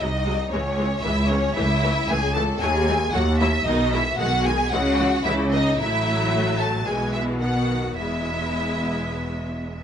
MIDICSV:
0, 0, Header, 1, 6, 480
1, 0, Start_track
1, 0, Key_signature, 4, "major"
1, 0, Tempo, 520833
1, 1445, Time_signature, 4, 2, 24, 8
1, 2892, Tempo, 532860
1, 6252, Tempo, 561272
1, 8789, End_track
2, 0, Start_track
2, 0, Title_t, "Violin section"
2, 0, Program_c, 0, 48
2, 11, Note_on_c, 0, 75, 122
2, 478, Note_on_c, 0, 73, 120
2, 487, Note_off_c, 0, 75, 0
2, 946, Note_off_c, 0, 73, 0
2, 959, Note_on_c, 0, 76, 127
2, 1200, Note_on_c, 0, 73, 123
2, 1201, Note_off_c, 0, 76, 0
2, 1442, Note_on_c, 0, 76, 127
2, 1444, Note_off_c, 0, 73, 0
2, 1924, Note_on_c, 0, 80, 127
2, 1926, Note_off_c, 0, 76, 0
2, 2163, Note_on_c, 0, 81, 127
2, 2167, Note_off_c, 0, 80, 0
2, 2236, Note_off_c, 0, 81, 0
2, 2405, Note_on_c, 0, 80, 127
2, 2879, Note_off_c, 0, 80, 0
2, 2890, Note_on_c, 0, 78, 127
2, 3121, Note_on_c, 0, 76, 127
2, 3128, Note_off_c, 0, 78, 0
2, 3359, Note_off_c, 0, 76, 0
2, 3361, Note_on_c, 0, 75, 127
2, 3601, Note_on_c, 0, 76, 127
2, 3605, Note_off_c, 0, 75, 0
2, 3844, Note_off_c, 0, 76, 0
2, 3847, Note_on_c, 0, 78, 127
2, 4081, Note_off_c, 0, 78, 0
2, 4081, Note_on_c, 0, 80, 127
2, 4316, Note_on_c, 0, 78, 127
2, 4322, Note_off_c, 0, 80, 0
2, 4790, Note_on_c, 0, 76, 127
2, 4801, Note_off_c, 0, 78, 0
2, 4862, Note_off_c, 0, 76, 0
2, 5041, Note_on_c, 0, 75, 127
2, 5281, Note_off_c, 0, 75, 0
2, 5283, Note_on_c, 0, 76, 127
2, 5995, Note_off_c, 0, 76, 0
2, 6003, Note_on_c, 0, 81, 113
2, 6247, Note_off_c, 0, 81, 0
2, 6254, Note_on_c, 0, 80, 107
2, 6482, Note_off_c, 0, 80, 0
2, 6482, Note_on_c, 0, 76, 105
2, 6550, Note_off_c, 0, 76, 0
2, 6715, Note_on_c, 0, 78, 111
2, 7183, Note_off_c, 0, 78, 0
2, 7193, Note_on_c, 0, 76, 111
2, 8789, Note_off_c, 0, 76, 0
2, 8789, End_track
3, 0, Start_track
3, 0, Title_t, "Violin section"
3, 0, Program_c, 1, 48
3, 17, Note_on_c, 1, 63, 104
3, 489, Note_off_c, 1, 63, 0
3, 490, Note_on_c, 1, 61, 112
3, 962, Note_off_c, 1, 61, 0
3, 967, Note_on_c, 1, 64, 109
3, 1200, Note_off_c, 1, 64, 0
3, 1208, Note_on_c, 1, 61, 125
3, 1448, Note_off_c, 1, 61, 0
3, 1452, Note_on_c, 1, 64, 127
3, 1922, Note_off_c, 1, 64, 0
3, 1929, Note_on_c, 1, 68, 127
3, 2169, Note_off_c, 1, 68, 0
3, 2169, Note_on_c, 1, 69, 125
3, 2405, Note_off_c, 1, 69, 0
3, 2413, Note_on_c, 1, 68, 127
3, 2888, Note_on_c, 1, 66, 126
3, 2893, Note_off_c, 1, 68, 0
3, 2961, Note_off_c, 1, 66, 0
3, 3129, Note_on_c, 1, 64, 127
3, 3201, Note_off_c, 1, 64, 0
3, 3367, Note_on_c, 1, 63, 127
3, 3603, Note_off_c, 1, 63, 0
3, 3612, Note_on_c, 1, 64, 110
3, 3684, Note_off_c, 1, 64, 0
3, 3842, Note_on_c, 1, 66, 125
3, 4078, Note_off_c, 1, 66, 0
3, 4083, Note_on_c, 1, 68, 117
3, 4323, Note_off_c, 1, 68, 0
3, 4323, Note_on_c, 1, 66, 127
3, 4795, Note_off_c, 1, 66, 0
3, 4797, Note_on_c, 1, 64, 124
3, 5042, Note_off_c, 1, 64, 0
3, 5045, Note_on_c, 1, 63, 123
3, 5282, Note_on_c, 1, 64, 127
3, 5283, Note_off_c, 1, 63, 0
3, 6009, Note_off_c, 1, 64, 0
3, 6010, Note_on_c, 1, 69, 110
3, 6082, Note_off_c, 1, 69, 0
3, 6245, Note_on_c, 1, 68, 101
3, 6313, Note_off_c, 1, 68, 0
3, 6481, Note_on_c, 1, 64, 97
3, 6710, Note_off_c, 1, 64, 0
3, 6717, Note_on_c, 1, 66, 98
3, 7184, Note_off_c, 1, 66, 0
3, 7192, Note_on_c, 1, 64, 106
3, 8789, Note_off_c, 1, 64, 0
3, 8789, End_track
4, 0, Start_track
4, 0, Title_t, "Viola section"
4, 0, Program_c, 2, 48
4, 6, Note_on_c, 2, 54, 82
4, 6, Note_on_c, 2, 56, 81
4, 80, Note_off_c, 2, 54, 0
4, 80, Note_off_c, 2, 56, 0
4, 245, Note_on_c, 2, 56, 85
4, 247, Note_on_c, 2, 54, 87
4, 319, Note_off_c, 2, 56, 0
4, 321, Note_off_c, 2, 54, 0
4, 482, Note_on_c, 2, 56, 95
4, 483, Note_on_c, 2, 52, 99
4, 556, Note_off_c, 2, 56, 0
4, 557, Note_off_c, 2, 52, 0
4, 724, Note_on_c, 2, 52, 83
4, 724, Note_on_c, 2, 56, 85
4, 797, Note_off_c, 2, 52, 0
4, 797, Note_off_c, 2, 56, 0
4, 960, Note_on_c, 2, 52, 94
4, 962, Note_on_c, 2, 56, 94
4, 1033, Note_off_c, 2, 52, 0
4, 1035, Note_off_c, 2, 56, 0
4, 1198, Note_on_c, 2, 52, 80
4, 1199, Note_on_c, 2, 56, 86
4, 1272, Note_off_c, 2, 52, 0
4, 1272, Note_off_c, 2, 56, 0
4, 1441, Note_on_c, 2, 52, 106
4, 1443, Note_on_c, 2, 57, 101
4, 1515, Note_off_c, 2, 52, 0
4, 1516, Note_off_c, 2, 57, 0
4, 1686, Note_on_c, 2, 52, 93
4, 1686, Note_on_c, 2, 57, 97
4, 1760, Note_off_c, 2, 52, 0
4, 1760, Note_off_c, 2, 57, 0
4, 1926, Note_on_c, 2, 52, 90
4, 1926, Note_on_c, 2, 57, 85
4, 1999, Note_off_c, 2, 52, 0
4, 2000, Note_off_c, 2, 57, 0
4, 2165, Note_on_c, 2, 52, 92
4, 2167, Note_on_c, 2, 57, 92
4, 2239, Note_off_c, 2, 52, 0
4, 2241, Note_off_c, 2, 57, 0
4, 2407, Note_on_c, 2, 54, 104
4, 2407, Note_on_c, 2, 57, 104
4, 2480, Note_off_c, 2, 57, 0
4, 2481, Note_off_c, 2, 54, 0
4, 2651, Note_on_c, 2, 57, 86
4, 2653, Note_on_c, 2, 54, 90
4, 2725, Note_off_c, 2, 57, 0
4, 2726, Note_off_c, 2, 54, 0
4, 2889, Note_on_c, 2, 54, 98
4, 2891, Note_on_c, 2, 57, 98
4, 2961, Note_off_c, 2, 54, 0
4, 2963, Note_off_c, 2, 57, 0
4, 3128, Note_on_c, 2, 54, 87
4, 3128, Note_on_c, 2, 57, 90
4, 3200, Note_off_c, 2, 54, 0
4, 3200, Note_off_c, 2, 57, 0
4, 3367, Note_on_c, 2, 51, 99
4, 3367, Note_on_c, 2, 56, 104
4, 3439, Note_off_c, 2, 51, 0
4, 3439, Note_off_c, 2, 56, 0
4, 3608, Note_on_c, 2, 51, 96
4, 3608, Note_on_c, 2, 56, 96
4, 3680, Note_off_c, 2, 51, 0
4, 3680, Note_off_c, 2, 56, 0
4, 3843, Note_on_c, 2, 51, 97
4, 3844, Note_on_c, 2, 56, 86
4, 3915, Note_off_c, 2, 51, 0
4, 3916, Note_off_c, 2, 56, 0
4, 4083, Note_on_c, 2, 51, 89
4, 4085, Note_on_c, 2, 56, 88
4, 4155, Note_off_c, 2, 51, 0
4, 4157, Note_off_c, 2, 56, 0
4, 4320, Note_on_c, 2, 52, 103
4, 4322, Note_on_c, 2, 56, 101
4, 4392, Note_off_c, 2, 52, 0
4, 4394, Note_off_c, 2, 56, 0
4, 4562, Note_on_c, 2, 56, 85
4, 4564, Note_on_c, 2, 52, 91
4, 4634, Note_off_c, 2, 56, 0
4, 4636, Note_off_c, 2, 52, 0
4, 4806, Note_on_c, 2, 56, 98
4, 4807, Note_on_c, 2, 52, 96
4, 4878, Note_off_c, 2, 56, 0
4, 4879, Note_off_c, 2, 52, 0
4, 5047, Note_on_c, 2, 52, 86
4, 5049, Note_on_c, 2, 56, 82
4, 5119, Note_off_c, 2, 52, 0
4, 5121, Note_off_c, 2, 56, 0
4, 5284, Note_on_c, 2, 57, 109
4, 5285, Note_on_c, 2, 54, 111
4, 6214, Note_off_c, 2, 54, 0
4, 6214, Note_off_c, 2, 57, 0
4, 6252, Note_on_c, 2, 52, 89
4, 6253, Note_on_c, 2, 56, 95
4, 6706, Note_off_c, 2, 56, 0
4, 6715, Note_off_c, 2, 52, 0
4, 6715, Note_on_c, 2, 51, 88
4, 6715, Note_on_c, 2, 59, 86
4, 7184, Note_off_c, 2, 59, 0
4, 7193, Note_off_c, 2, 51, 0
4, 7196, Note_on_c, 2, 59, 79
4, 7198, Note_on_c, 2, 56, 83
4, 8789, Note_off_c, 2, 56, 0
4, 8789, Note_off_c, 2, 59, 0
4, 8789, End_track
5, 0, Start_track
5, 0, Title_t, "Cello section"
5, 0, Program_c, 3, 48
5, 7, Note_on_c, 3, 36, 94
5, 428, Note_off_c, 3, 36, 0
5, 489, Note_on_c, 3, 37, 103
5, 905, Note_off_c, 3, 37, 0
5, 960, Note_on_c, 3, 37, 104
5, 1388, Note_off_c, 3, 37, 0
5, 1446, Note_on_c, 3, 37, 112
5, 1871, Note_off_c, 3, 37, 0
5, 1926, Note_on_c, 3, 37, 103
5, 2352, Note_off_c, 3, 37, 0
5, 2410, Note_on_c, 3, 39, 118
5, 2834, Note_off_c, 3, 39, 0
5, 2887, Note_on_c, 3, 39, 107
5, 3309, Note_off_c, 3, 39, 0
5, 3361, Note_on_c, 3, 47, 111
5, 3788, Note_off_c, 3, 47, 0
5, 3844, Note_on_c, 3, 47, 106
5, 4266, Note_off_c, 3, 47, 0
5, 4319, Note_on_c, 3, 49, 120
5, 4745, Note_off_c, 3, 49, 0
5, 4800, Note_on_c, 3, 49, 110
5, 5228, Note_off_c, 3, 49, 0
5, 5286, Note_on_c, 3, 45, 104
5, 6214, Note_off_c, 3, 45, 0
5, 6249, Note_on_c, 3, 47, 95
5, 7190, Note_on_c, 3, 40, 78
5, 7191, Note_off_c, 3, 47, 0
5, 8789, Note_off_c, 3, 40, 0
5, 8789, End_track
6, 0, Start_track
6, 0, Title_t, "Double bass section"
6, 0, Program_c, 4, 48
6, 13, Note_on_c, 4, 36, 103
6, 431, Note_off_c, 4, 36, 0
6, 483, Note_on_c, 4, 37, 103
6, 902, Note_off_c, 4, 37, 0
6, 963, Note_on_c, 4, 37, 115
6, 1389, Note_off_c, 4, 37, 0
6, 1445, Note_on_c, 4, 37, 112
6, 1871, Note_off_c, 4, 37, 0
6, 1925, Note_on_c, 4, 37, 113
6, 2351, Note_off_c, 4, 37, 0
6, 2406, Note_on_c, 4, 39, 126
6, 2832, Note_off_c, 4, 39, 0
6, 2886, Note_on_c, 4, 39, 125
6, 3308, Note_off_c, 4, 39, 0
6, 3361, Note_on_c, 4, 35, 119
6, 3788, Note_off_c, 4, 35, 0
6, 3842, Note_on_c, 4, 35, 119
6, 4265, Note_off_c, 4, 35, 0
6, 4322, Note_on_c, 4, 37, 114
6, 4747, Note_off_c, 4, 37, 0
6, 4801, Note_on_c, 4, 37, 114
6, 5229, Note_off_c, 4, 37, 0
6, 5285, Note_on_c, 4, 33, 106
6, 6214, Note_off_c, 4, 33, 0
6, 6251, Note_on_c, 4, 35, 95
6, 7189, Note_on_c, 4, 28, 80
6, 7192, Note_off_c, 4, 35, 0
6, 8789, Note_off_c, 4, 28, 0
6, 8789, End_track
0, 0, End_of_file